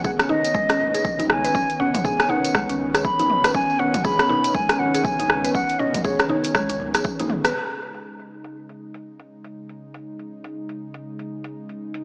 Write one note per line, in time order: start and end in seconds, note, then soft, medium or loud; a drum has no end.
0.00 7.51 D#3 medium
0.00 7.50 B3 medium
0.00 7.51 C#4 medium
0.04 0.18 G#4 medium
0.04 0.11 F#5 loud
0.04 kick loud
0.04 tambourine medium
0.04 muted conga soft
0.19 cross-stick medium
0.19 closed hi-hat soft
0.19 tambourine soft
0.29 0.43 D#4 medium
0.29 1.26 D#5 loud
0.29 muted conga medium
0.29 high conga loud
0.45 closed hi-hat medium
0.45 tambourine medium
0.54 0.64 G#1 loud
0.54 0.68 G#3 medium
0.54 kick loud
0.54 tambourine medium
0.69 0.78 C#4 medium
0.69 cross-stick medium
0.69 closed hi-hat soft
0.69 tambourine soft
0.80 high conga medium
0.80 low conga medium
0.94 1.00 G#4 medium
0.94 closed hi-hat medium
0.94 tambourine medium
0.94 muted conga soft
1.05 kick loud
1.05 tambourine medium
1.05 high conga medium
1.19 1.29 D#4 medium
1.19 closed hi-hat soft
1.19 tambourine soft
1.19 muted conga soft
1.19 high conga medium
1.19 low conga loud
1.30 1.48 C#2 medium
1.30 1.81 G#5 loud
1.30 cross-stick medium
1.44 1.54 B4 medium
1.44 closed hi-hat soft
1.44 tambourine medium
1.44 muted conga soft
1.55 1.65 C#2 loud
1.55 1.63 C#4 loud
1.55 kick loud
1.55 tambourine medium
1.70 closed hi-hat soft
1.70 tambourine soft
1.80 1.88 C#4 loud
1.80 2.06 F#5 medium
1.80 muted conga medium
1.80 high conga loud
1.94 kick medium
1.94 closed hi-hat medium
1.94 mid tom loud
1.94 tambourine medium
1.94 high conga medium
1.94 low conga loud
2.04 2.18 G#4 medium
2.04 2.31 G#5 loud
2.04 kick loud
2.04 tambourine medium
2.04 muted conga soft
2.20 cross-stick medium
2.20 closed hi-hat soft
2.20 tambourine soft
2.28 2.43 D#4 medium
2.28 2.78 F#5 medium
2.28 muted conga soft
2.28 high conga loud
2.45 closed hi-hat medium
2.45 tambourine medium
2.54 3.11 C#2 medium
2.54 2.68 G#3 medium
2.54 kick loud
2.54 cross-stick medium
2.54 tambourine medium
2.54 muted conga soft
2.54 high conga medium
2.69 2.79 C#4 medium
2.69 closed hi-hat soft
2.69 tambourine soft
2.79 high conga medium
2.94 3.00 G#4 medium
2.94 cross-stick medium
2.94 closed hi-hat medium
2.94 tambourine medium
2.94 muted conga soft
3.04 3.51 B5 loud
3.04 kick loud
3.04 tambourine medium
3.19 3.49 G#1 loud
3.19 3.29 D#4 medium
3.19 closed hi-hat soft
3.19 tambourine soft
3.19 muted conga soft
3.19 low conga medium
3.30 mid tom loud
3.44 3.54 B4 medium
3.44 cross-stick medium
3.44 closed hi-hat medium
3.44 tambourine medium
3.44 muted conga medium
3.44 high conga medium
3.54 3.64 C#2 loud
3.54 3.63 C#4 loud
3.54 3.81 G#5 loud
3.54 kick loud
3.54 tambourine medium
3.70 tambourine soft
3.79 3.88 C#4 medium
3.79 4.06 F#5 loud
3.79 muted conga soft
3.79 high conga medium
3.94 kick medium
3.94 closed hi-hat medium
3.94 mid tom loud
3.94 tambourine medium
3.94 high conga medium
3.94 low conga loud
4.04 4.18 G#4 medium
4.04 4.56 B5 loud
4.04 kick loud
4.04 tambourine medium
4.04 muted conga soft
4.19 cross-stick medium
4.19 closed hi-hat soft
4.19 tambourine soft
4.29 4.43 D#4 medium
4.29 muted conga medium
4.29 high conga loud
4.44 closed hi-hat medium
4.44 tambourine medium
4.54 4.64 G#1 loud
4.54 4.68 G#3 medium
4.54 4.81 G#5 loud
4.54 kick loud
4.54 tambourine medium
4.54 muted conga soft
4.69 4.78 C#4 medium
4.69 cross-stick medium
4.69 closed hi-hat soft
4.69 tambourine soft
4.79 5.06 F#5 loud
4.79 high conga medium
4.79 low conga medium
4.94 5.00 G#4 medium
4.94 closed hi-hat medium
4.94 tambourine medium
4.94 muted conga medium
5.03 5.54 G#5 loud
5.03 kick loud
5.03 tambourine medium
5.03 high conga medium
5.19 5.29 D#4 medium
5.19 closed hi-hat soft
5.19 tambourine soft
5.19 muted conga soft
5.19 high conga medium
5.19 low conga loud
5.30 5.48 C#2 medium
5.30 cross-stick medium
5.44 5.54 B4 medium
5.44 closed hi-hat medium
5.44 tambourine medium
5.44 muted conga medium
5.54 5.64 C#2 loud
5.54 5.63 C#4 loud
5.54 5.81 F#5 loud
5.54 kick loud
5.54 tambourine medium
5.69 closed hi-hat soft
5.69 tambourine soft
5.79 5.88 C#4 medium
5.79 6.04 D#5 medium
5.79 muted conga soft
5.79 high conga loud
5.94 kick medium
5.94 closed hi-hat medium
5.94 mid tom loud
5.94 tambourine medium
5.94 high conga loud
5.94 low conga loud
6.04 6.18 G#4 medium
6.04 6.28 C#5 medium
6.04 kick loud
6.04 tambourine medium
6.04 muted conga soft
6.19 cross-stick medium
6.19 closed hi-hat soft
6.19 tambourine soft
6.29 6.43 D#4 medium
6.29 7.25 C#5 medium
6.29 muted conga soft
6.29 high conga medium
6.44 closed hi-hat medium
6.44 tambourine medium
6.55 6.96 C#2 medium
6.55 6.68 G#3 medium
6.55 kick loud
6.55 cross-stick medium
6.55 tambourine medium
6.55 muted conga soft
6.55 high conga medium
6.69 6.79 C#4 medium
6.69 closed hi-hat soft
6.69 tambourine soft
6.80 high conga medium
6.80 low conga medium
6.94 7.01 G#1 medium
6.94 7.00 G#4 medium
6.94 cross-stick medium
6.94 closed hi-hat medium
6.94 tambourine medium
6.94 muted conga soft
7.04 kick loud
7.04 tambourine medium
7.19 7.29 D#4 medium
7.19 closed hi-hat soft
7.19 tambourine soft
7.19 muted conga soft
7.19 low conga loud
7.30 7.40 G#1 medium
7.30 mid tom medium
7.44 7.54 B4 medium
7.44 cross-stick medium
7.44 closed hi-hat medium
7.44 tambourine medium
7.44 muted conga medium
7.44 high conga medium
7.54 12.04 C#3 medium
7.54 12.04 G#3 medium
7.54 12.04 D#4 medium
7.70 closed hi-hat soft
7.94 closed hi-hat medium
8.19 closed hi-hat soft
8.44 closed hi-hat medium
8.69 closed hi-hat soft
8.94 closed hi-hat medium
9.20 closed hi-hat soft
9.44 closed hi-hat medium
9.69 closed hi-hat soft
9.94 closed hi-hat medium
10.19 closed hi-hat soft
10.44 closed hi-hat medium
10.69 closed hi-hat soft
10.94 closed hi-hat medium
11.19 closed hi-hat soft
11.44 closed hi-hat medium
11.69 closed hi-hat soft
11.94 closed hi-hat medium